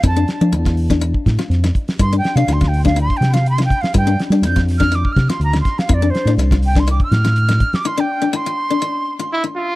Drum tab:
HH |xxxxxxo-x-x-xxxx|xxxxxxoxxxxxxxxx|xxxxxxoxx-x-xxxx|xxxxxxoxxxxxxxxx|
SD |--o--o-o--oooo-o|--oooo-o--oo-o-o|--ooooooo-oo-ooo|--oooo-o--oo-o-o|
BD |o----o-o-oo---o-|o----o-o-o----o-|o----o-o-oo---o-|o----o-o-o----o-|

HH |----------------|
SD |----------------|
BD |----------------|